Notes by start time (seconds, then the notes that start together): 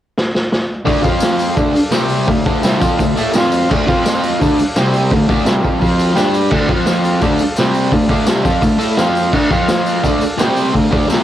0.18 snare
0.35 snare
0.52 snare
0.85 D3 A3 D4, kick, open hi-hat, tambourine
1.02 F3 C4 F4 C5 F5, kick, open hi-hat, tambourine
1.20 snare, open hi-hat, tambourine
1.39 open hi-hat, tambourine
1.54 D3 A3 A4 D5 F5, kick, open hi-hat, tambourine
1.58 D4
1.75 muted distorted electric guitar stroke, open hi-hat, tambourine
1.91 C3 G3 C4 G4 C5 G5, snare, open hi-hat, tambourine
2.08 open hi-hat, tambourine
2.26 D3 A3 A4 D5 F5, kick, open hi-hat, tambourine
2.45 D3 A3 D4, kick, open hi-hat, tambourine
2.63 C3 G3 C4, snare, open hi-hat, tambourine
2.80 F3 C4 F4, kick, open hi-hat, tambourine
2.99 D3 A3, kick, open hi-hat, tambourine
3.16 A3 E4 A4, open hi-hat, tambourine
3.34 F3 C4 F4 C5, snare, open hi-hat, tambourine
3.38 F5 C6
3.52 open hi-hat, tambourine
3.70 D3 A3 D4, kick, tambourine, crash
3.87 F3 C4 F4 C5 F5, kick, open hi-hat, tambourine
4.05 snare, open hi-hat, tambourine
4.23 open hi-hat, tambourine
4.40 D3 A3 D4 A4 D5 F5, kick, open hi-hat, tambourine
4.59 muted distorted electric guitar stroke, open hi-hat, tambourine
4.75 C3 G3 C4 G4 C5 G5, snare, open hi-hat, tambourine
4.92 open hi-hat, tambourine
5.10 D3 A3, kick, open hi-hat, tambourine
5.14 A4 D5 F5
5.28 D3 A3 D4, kick, open hi-hat, tambourine
5.45 C3 G3 C4, snare, open hi-hat, tambourine
5.62 F3 C4 F4, kick, open hi-hat, tambourine
5.79 F3 C4 F4, kick, open hi-hat, tambourine
5.84 C5 F5
5.99 open hi-hat, tambourine
6.15 G3 D4 G4 D5 G5, snare, open hi-hat, tambourine
6.19 A5
6.34 G5, open hi-hat, tambourine
6.51 D3 A3 D4, kick, crash, tambourine
6.68 F3 C4 F4, kick, open hi-hat
6.72 C5 F5
6.86 snare, open hi-hat, tambourine
7.04 open hi-hat, tambourine
7.21 D3 A3 D4 A4 D5 F5, kick, open hi-hat, tambourine
7.39 muted distorted electric guitar stroke, open hi-hat, tambourine
7.56 C3 G3 C4 G4 C5 G5, snare, open hi-hat, tambourine
7.74 open hi-hat, tambourine
7.91 D3 A3 A4 D5 F5, kick, open hi-hat, tambourine
8.09 D3 A3 D4, kick, open hi-hat, tambourine
8.27 C3 G3 C4, snare, open hi-hat, tambourine
8.45 F3 C4 F4, kick, open hi-hat, tambourine
8.62 D3 A3, kick, open hi-hat, tambourine
8.79 A3 E4 A4, open hi-hat, tambourine
8.97 F3 C4 F4 C5 F5, snare, open hi-hat, tambourine
9.15 open hi-hat, tambourine
9.33 D3 A3 D4, kick, crash, tambourine
9.51 F3 C4 F4 C5 F5, kick, open hi-hat, tambourine
9.68 snare, open hi-hat, tambourine
9.86 open hi-hat, tambourine
10.04 D3 A3 D4 A4 D5 F5, kick, open hi-hat, tambourine
10.20 muted distorted electric guitar stroke, open hi-hat, tambourine
10.37 C3 G3 C4 G4 C5 G5, snare, open hi-hat, tambourine
10.57 open hi-hat, tambourine
10.74 D3 A3 A4 D5 F5, kick, open hi-hat, tambourine
10.90 D3 A3 D4, kick, open hi-hat, tambourine
11.08 C3 G3 C4, open hi-hat, tambourine
11.12 snare